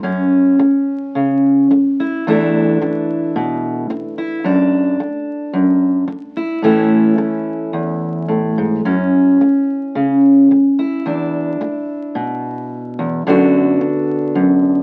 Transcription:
0.03 steel-string acoustic guitar F#2 C#4
0.59 muted steel-string acoustic guitar stroke
1.15 steel-string acoustic guitar C#3
1.71 muted steel-string acoustic guitar stroke
2.00 steel-string acoustic guitar E4
2.27 steel-string acoustic guitar E2 E3 A3 D4 E4
2.81 muted steel-string acoustic guitar stroke
3.36 steel-string acoustic guitar B2
3.90 muted steel-string acoustic guitar stroke
4.18 steel-string acoustic guitar E4
4.44 steel-string acoustic guitar F#2 D4
5.00 muted steel-string acoustic guitar stroke
5.53 steel-string acoustic guitar F#2
6.08 muted steel-string acoustic guitar stroke
6.37 steel-string acoustic guitar E4
6.62 steel-string acoustic guitar A2 E3 A3 C#4 E4
7.18 muted steel-string acoustic guitar stroke
7.73 steel-string acoustic guitar E2
8.28 steel-string acoustic guitar A2
8.58 steel-string acoustic guitar G#2
8.85 steel-string acoustic guitar F#2 C#4
9.41 muted steel-string acoustic guitar stroke
9.95 steel-string acoustic guitar C#3
10.51 muted steel-string acoustic guitar stroke
10.79 steel-string acoustic guitar E4
11.06 steel-string acoustic guitar E2 D4
11.61 muted steel-string acoustic guitar stroke
12.15 steel-string acoustic guitar B2
12.99 steel-string acoustic guitar E2
13.27 steel-string acoustic guitar F#2 D3 B3 D4 F#4
13.81 muted steel-string acoustic guitar stroke
14.35 steel-string acoustic guitar F#2

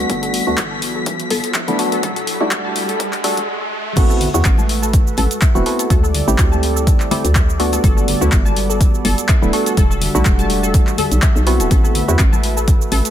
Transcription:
Already playing: analog synth pad G3 A4 D5, synth stab A3 B3 D4 F#4, violin section B6, riser
0.09 fm bass G1, analog synth pad B3 F#4, synth pluck A4, kick, closed hi-hat
0.23 synth pluck A4, closed hi-hat
0.34 open hi-hat
0.47 fm bass D2, synth stab A3 B3 D4 F#4, synth pluck E4
0.57 fm bass G1, kick, clap, closed hi-hat
0.71 synth pluck A5
0.82 open hi-hat
0.95 synth pluck A4
1.06 kick, closed hi-hat
1.20 closed hi-hat
1.30 fm bass G1, synth pluck A4, open hi-hat
1.44 closed hi-hat
1.54 synth pluck E5, kick, clap, closed hi-hat
1.68 fm bass D1, synth stab A3 B3 D4 E4, closed hi-hat
1.79 synth stab A3 B3 D4 F#4, synth pluck A4, open hi-hat
1.92 synth pluck A4, closed hi-hat
2.03 fm bass E1, analog synth pad E4, synth pluck A4, kick, closed hi-hat
2.16 synth pluck A4, closed hi-hat
2.27 open hi-hat
2.40 fm bass B1, synth stab G3 A3 D4 F#4, synth pluck E4
2.51 fm bass E1, kick, clap, closed hi-hat
2.65 synth pluck A5
2.76 open hi-hat
2.89 synth pluck A4, closed hi-hat
3.00 kick, closed hi-hat
3.13 clap, closed hi-hat
3.24 synth stab G3 A3 D4 F#4, synth pluck A4, open hi-hat
3.37 fm bass E1, closed hi-hat
3.96 fm bass A1, analog synth pad A3 F#4 B4 E5, synth stab B3 C4 E4 F#4, synth pluck A4, kick, closed hi-hat, crash, high conga, cabasa
4.10 synth pluck A4, cabasa
4.21 open hi-hat, low conga
4.34 fm bass E2, synth stab B3 C4 E4 F#4, synth pluck E4, cabasa
4.45 fm bass A1, kick, clap, closed hi-hat, cabasa
4.58 synth pluck A5, high conga, cabasa
4.69 open hi-hat
4.82 synth pluck A4, cabasa
4.93 kick, closed hi-hat, cabasa
5.07 cabasa
5.17 fm bass A1, synth pluck A4, open hi-hat, muted conga, high conga
5.31 closed hi-hat, cabasa
5.41 synth pluck E5, kick, clap, closed hi-hat, cabasa
5.55 fm bass E1, synth stab B3 C4 E4 F#4, cabasa
5.66 synth stab B3 C4 E4 F#4, synth pluck A4, open hi-hat
5.79 synth pluck A4, closed hi-hat, cabasa
5.90 fm bass D2, analog synth pad G3 E4 A4 D5, synth pluck A4, kick, closed hi-hat, high conga, cabasa
6.03 synth pluck A4, cabasa
6.14 open hi-hat, low conga
6.28 fm bass A1, synth stab A3 C4 E4 G4, synth pluck E4, cabasa
6.38 fm bass D2, kick, clap, closed hi-hat, cabasa
6.52 synth pluck A5, high conga, cabasa
6.63 open hi-hat
6.76 synth pluck A4, cabasa
6.87 kick, closed hi-hat, cabasa
7.00 clap, cabasa
7.11 synth stab A3 C4 E4 G4, synth pluck A4, open hi-hat, muted conga, high conga, low conga
7.24 fm bass D2, closed hi-hat, cabasa
7.35 synth pluck E5, kick, clap, closed hi-hat, cabasa
7.50 cabasa
7.60 synth stab A3 B3 D4 F#4, synth pluck A4, open hi-hat
7.72 synth pluck A4, closed hi-hat, muted conga, cabasa
7.84 fm bass G1, analog synth pad B3 F#4 A4, synth pluck A4, kick, closed hi-hat, high conga, cabasa
7.97 synth pluck A4, cabasa
8.08 open hi-hat, low conga
8.21 fm bass D2, synth stab A3 B3 D4 F#4, synth pluck E4, cabasa
8.32 fm bass G1, kick, clap, closed hi-hat, cabasa
8.45 synth pluck A5, high conga, cabasa
8.56 open hi-hat
8.70 synth pluck A4, cabasa
8.81 kick, closed hi-hat, cabasa
8.95 cabasa
9.05 fm bass G1, synth pluck A4, open hi-hat, muted conga, high conga
9.18 closed hi-hat, cabasa
9.29 synth pluck E5, kick, clap, closed hi-hat, cabasa
9.42 fm bass D1, synth stab A3 B3 D4 E4, cabasa
9.53 synth stab A3 B3 D4 F#4, synth pluck A4, open hi-hat
9.66 synth pluck A4, closed hi-hat, cabasa
9.77 fm bass E1, analog synth pad G3 D4 E5, synth pluck A4, kick, closed hi-hat, high conga, cabasa
9.91 synth pluck A4, cabasa
10.01 open hi-hat, low conga
10.15 fm bass B1, synth stab G3 A3 D4 F#4, synth pluck E4, cabasa
10.25 fm bass E1, kick, clap, closed hi-hat, cabasa
10.39 synth pluck A5, closed hi-hat, high conga, cabasa
10.50 open hi-hat
10.63 synth pluck A4, cabasa
10.74 kick, closed hi-hat, cabasa
10.87 clap, cabasa
10.98 synth pluck A4, open hi-hat, muted conga, high conga, low conga
11.12 fm bass B1, closed hi-hat, cabasa
11.22 synth pluck E5, kick, clap, closed hi-hat, cabasa
11.36 fm bass B1, cabasa
11.47 synth stab B3 C4 E4 F#4, synth pluck A4, open hi-hat
11.60 fm bass D1, synth pluck A4, closed hi-hat, muted conga, cabasa
11.71 fm bass A1, analog synth pad A3 B4, synth pluck A4, kick, closed hi-hat, high conga, cabasa
11.84 synth pluck A4, cabasa
11.95 open hi-hat, low conga
12.08 fm bass E2, synth stab B3 C4 E4 F#4, synth pluck E4, cabasa
12.19 fm bass A1, kick, clap, closed hi-hat, cabasa
12.33 synth pluck A5, high conga, cabasa
12.43 open hi-hat
12.57 synth pluck A4, cabasa
12.68 kick, closed hi-hat, cabasa
12.82 cabasa
12.92 fm bass A1, synth pluck A4, open hi-hat, muted conga, high conga
13.05 closed hi-hat, cabasa

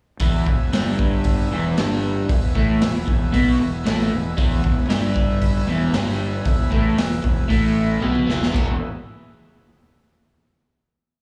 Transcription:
0.20 fingered electric bass E1, overdriven electric guitar E2 E3, tonewheel organ B3 E4 E5 G#5, kick, open hi-hat
0.47 fingered electric bass E1, overdriven electric guitar E2, kick
0.73 fingered electric bass G1, overdriven electric guitar G2 G3, snare, open hi-hat
0.99 kick
1.24 kick, open hi-hat
1.51 fingered electric bass E1, overdriven electric guitar E2 E3
1.77 fingered electric bass G1, overdriven electric guitar G2 G3, snare, open hi-hat
2.29 fingered electric bass E1, overdriven electric guitar E2, kick, open hi-hat
2.55 fingered electric bass A1, overdriven electric guitar A2 A3, kick
2.81 fingered electric bass E1, overdriven electric guitar E2, snare, open hi-hat
3.07 fingered electric bass E1, overdriven electric guitar E2, kick
3.33 fingered electric bass B1, overdriven electric guitar B2 B3, kick, open hi-hat
3.59 fingered electric bass E1, overdriven electric guitar E2
3.85 fingered electric bass A1, overdriven electric guitar A2 A3, snare, open hi-hat
4.00 snare
4.11 fingered electric bass E1, overdriven electric guitar E2
4.37 fingered electric bass E1, overdriven electric guitar E2 E3, tonewheel organ E4 B4 E5 G#5, kick, open hi-hat
4.63 fingered electric bass E1, overdriven electric guitar E2, kick
4.88 fingered electric bass G1, overdriven electric guitar G2 G3, snare, open hi-hat
5.16 kick
5.42 kick, open hi-hat
5.66 fingered electric bass E1, overdriven electric guitar E2 E3
5.93 fingered electric bass G1, overdriven electric guitar G2 G3, snare, open hi-hat
6.07 snare
6.45 fingered electric bass E1, overdriven electric guitar E2, kick, open hi-hat
6.71 fingered electric bass A1, overdriven electric guitar A2 A3, kick
6.95 fingered electric bass E1, overdriven electric guitar E2, snare, open hi-hat
7.23 fingered electric bass E1, overdriven electric guitar E2, kick
7.48 fingered electric bass A1, overdriven electric guitar A2 A3, kick, open hi-hat
8.00 fingered electric bass B1, overdriven electric guitar B2 B3, high tom
8.15 mid tom
8.27 fingered electric bass E1, overdriven electric guitar E2 E3, snare
8.43 snare
8.52 fingered electric bass E1, overdriven electric guitar E2 B2 E3, tonewheel organ B3 E4 G#4 E5, kick, crash

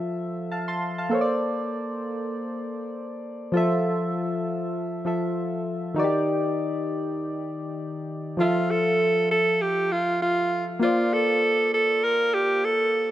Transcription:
Already playing: synth keys F3 F4 A4 E5
0.52 synth keys F5 A5
0.68 synth keys A5 C6
0.98 synth keys F5 A5
1.09 synth keys A#3 A4 C5
1.15 synth keys C#5
1.21 synth keys D5
3.52 synth keys F3 F4 A4
3.57 synth keys E5
5.05 synth keys F3 F4 A4 E5
5.94 synth keys D#3 D#4 F#4
5.99 synth keys D5
6.04 synth keys G4
8.37 synth keys F3 F4 A4, alto saxophone F4
8.42 synth keys E5
8.71 alto saxophone A4
9.31 alto saxophone A4
9.62 alto saxophone G4
9.92 alto saxophone F4
10.22 alto saxophone F4
10.80 synth keys A#3 F4 C5, alto saxophone F4
10.85 synth keys D5
11.13 alto saxophone A4
11.74 alto saxophone A4
12.04 alto saxophone A#4
12.34 alto saxophone G4
12.65 alto saxophone A4

